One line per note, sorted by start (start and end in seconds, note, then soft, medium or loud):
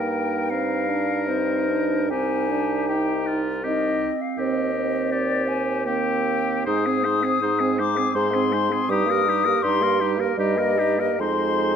0.00 2.11 G2 soft
0.00 0.52 A#3 soft
0.00 1.29 D#4 soft
0.00 0.50 A#4 soft
0.00 0.52 G5 medium
0.50 0.88 C4 soft
0.50 2.07 A#4 soft
0.50 1.28 F5 medium
0.89 1.30 D4 soft
1.27 1.70 C4 soft
1.27 2.12 D#4 soft
1.27 2.11 C5 medium
1.69 2.12 D4 soft
2.10 4.09 C2 soft
2.10 2.52 C4 soft
2.10 3.63 D#4 medium
2.10 2.87 G4 soft
2.10 2.90 G#5 medium
2.51 2.91 D4 soft
2.88 3.48 D#4 soft
2.88 3.28 G4 soft
2.88 3.38 G5 medium
3.27 3.65 F4 soft
3.64 5.54 C4 medium
3.64 4.12 D#4 soft
3.64 4.12 G4 medium
3.64 4.23 D#5 medium
4.21 4.40 F5 medium
4.37 6.63 D#2 soft
4.37 4.73 C4 medium
4.37 5.08 G4 soft
4.37 5.13 D#5 medium
4.74 5.89 C4 medium
5.12 5.85 G4 soft
5.12 5.49 D5 medium
5.48 5.88 G#5 medium
5.86 6.67 A#3 medium
5.86 6.63 C4 soft
5.86 6.65 G4 medium
5.86 6.66 G5 medium
6.66 7.33 G#2 medium
6.66 6.88 G#3 medium
6.66 6.88 D#4 medium
6.66 6.88 C5 medium
6.66 7.77 D#6 medium
6.86 7.06 C4 soft
6.86 7.07 C4 soft
6.86 7.06 G#4 soft
7.05 7.24 G#3 soft
7.05 7.25 D#4 soft
7.05 7.25 C5 soft
7.23 7.41 C4 soft
7.23 7.42 G#4 soft
7.42 8.07 G#2 medium
7.42 7.62 G#3 soft
7.42 7.62 D#4 medium
7.42 7.61 C5 soft
7.60 7.81 C4 soft
7.60 7.82 C4 medium
7.60 7.81 G#4 soft
7.79 7.99 G#3 soft
7.79 8.00 D#4 soft
7.79 7.99 C5 soft
7.79 8.17 D6 medium
7.97 8.14 C4 soft
7.97 8.16 C4 soft
7.97 8.14 G#4 soft
8.15 8.81 G#2 medium
8.15 8.34 G#3 medium
8.15 8.37 D#4 medium
8.15 8.35 C5 medium
8.15 8.91 C6 medium
8.33 8.53 C4 soft
8.33 8.56 C4 soft
8.33 8.55 G#4 soft
8.52 8.72 G#3 medium
8.52 8.74 D#4 soft
8.52 8.74 C5 soft
8.70 8.88 C4 soft
8.70 8.90 C4 soft
8.70 8.90 G#4 soft
8.89 9.54 G2 medium
8.89 9.09 G3 medium
8.89 9.12 D#4 medium
8.89 9.12 G4 medium
8.89 9.64 D#6 medium
9.07 9.27 A#3 medium
9.07 9.30 G4 soft
9.07 9.31 A#4 medium
9.26 9.46 G3 soft
9.26 9.48 D#4 soft
9.26 9.47 G4 medium
9.45 9.63 A#3 soft
9.45 9.64 G4 soft
9.45 9.63 A#4 soft
9.63 10.28 G2 medium
9.63 9.83 G3 medium
9.63 9.84 D#4 medium
9.63 9.84 G4 soft
9.63 10.11 C6 loud
9.81 10.02 A#3 soft
9.81 10.03 G4 medium
9.81 10.02 A#4 soft
10.00 10.20 G3 soft
10.00 10.21 D#4 medium
10.00 10.22 G4 medium
10.18 10.37 A#3 soft
10.18 10.38 G4 medium
10.18 10.38 A#4 soft
10.37 11.10 G2 medium
10.37 10.58 G3 medium
10.37 10.58 D#4 medium
10.37 10.60 G4 medium
10.37 11.21 D#5 medium
10.56 10.78 A#3 medium
10.56 10.80 G4 soft
10.56 10.80 A#4 medium
10.76 10.99 G3 soft
10.76 11.01 D#4 soft
10.76 11.01 G4 medium
10.98 11.19 A#3 soft
10.98 11.20 G4 medium
10.98 11.20 A#4 soft
11.19 11.76 F2 medium
11.19 11.76 G#3 medium
11.19 11.76 D#4 medium
11.19 11.76 C5 medium
11.19 11.76 C6 medium